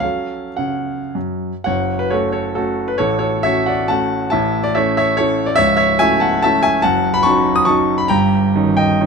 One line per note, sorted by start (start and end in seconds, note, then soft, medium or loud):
0.00 0.42 F#3 soft
0.00 0.47 C#4 soft
0.00 0.47 A4 soft
0.00 0.58 F5 medium
0.57 0.98 C#3 soft
0.57 1.14 F#5 medium
1.15 1.51 F#2 soft
1.64 2.96 F#1 soft
1.64 2.96 F#2 medium
1.64 1.98 C#5 medium
1.64 1.99 F#5 medium
1.99 2.11 B4 medium
2.10 2.53 A3 soft
2.10 2.53 C#4 soft
2.10 2.53 F#4 soft
2.10 2.32 A4 soft
2.10 2.31 C#5 medium
2.32 2.54 A4 medium
2.32 2.55 C#5 medium
2.55 2.96 A3 soft
2.55 2.96 C#4 soft
2.55 2.87 F#4 medium
2.55 2.88 A4 medium
2.88 2.99 B4 medium
2.98 4.28 A1 soft
2.98 4.28 A2 medium
2.98 3.19 A4 medium
2.98 3.17 C#5 medium
3.19 3.42 A4 medium
3.19 3.43 C#5 medium
3.43 3.86 A3 soft
3.43 3.86 C#4 soft
3.43 3.86 F#4 soft
3.43 3.66 C#5 medium
3.43 3.67 E5 medium
3.66 3.88 D5 medium
3.66 3.89 F#5 medium
3.88 4.28 A3 soft
3.88 4.28 C#4 soft
3.88 4.29 F#4 soft
3.88 4.29 F#5 medium
3.88 4.29 A5 medium
4.30 5.56 A1 soft
4.30 5.56 A2 medium
4.30 4.61 E5 medium
4.30 4.63 A5 medium
4.64 4.75 D5 medium
4.75 5.16 A3 soft
4.75 5.16 C#4 soft
4.75 5.16 E4 medium
4.75 4.96 C#5 medium
4.75 4.96 E5 medium
4.97 5.16 C#5 medium
4.97 5.19 E5 medium
5.17 5.55 A3 soft
5.17 5.55 C#4 soft
5.17 5.55 E4 soft
5.17 5.46 A4 medium
5.17 5.48 C#5 medium
5.46 5.58 D5 medium
5.56 6.80 C#1 medium
5.56 6.80 C#2 medium
5.56 5.76 C#5 medium
5.56 5.75 E5 loud
5.77 5.98 C#5 medium
5.77 5.98 E5 medium
5.99 6.40 A3 medium
5.99 6.40 C#4 medium
5.99 6.40 E4 medium
5.99 6.21 E5 medium
5.99 6.22 G#5 loud
6.20 6.42 F#5 medium
6.20 6.41 A5 medium
6.42 6.81 A3 soft
6.42 6.81 C#4 medium
6.42 6.81 E4 medium
6.42 6.62 E5 medium
6.42 6.64 A5 loud
6.63 6.82 E5 medium
6.63 6.83 G#5 loud
6.82 8.06 F#1 medium
6.82 8.07 F#2 medium
6.82 7.12 F#5 medium
6.82 7.14 A5 loud
7.14 7.25 B5 loud
7.23 7.64 F#3 medium
7.23 7.64 C#4 medium
7.23 7.64 D#4 medium
7.23 7.55 A5 medium
7.23 7.56 C#6 loud
7.56 7.67 D#6 loud
7.65 8.06 F#3 soft
7.65 8.06 C#4 soft
7.65 8.06 D#4 medium
7.65 7.97 A5 medium
7.65 7.98 C#6 loud
7.98 8.09 B5 medium
8.08 9.06 G1 medium
8.08 9.06 G2 medium
8.08 8.73 G5 medium
8.08 8.76 A#5 medium
8.55 8.96 D#3 soft
8.55 8.96 C#4 soft
8.55 8.96 D#4 medium
8.77 8.98 D#5 medium
8.77 8.99 G5 medium
9.01 9.06 D#3 soft
9.01 9.06 C#4 soft
9.01 9.06 D#4 soft